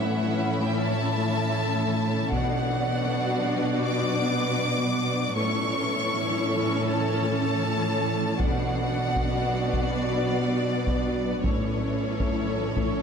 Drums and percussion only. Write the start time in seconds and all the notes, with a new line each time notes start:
2.32 taiko
8.40 taiko
9.16 taiko
9.73 taiko
10.87 taiko
11.44 taiko
12.20 taiko
12.77 taiko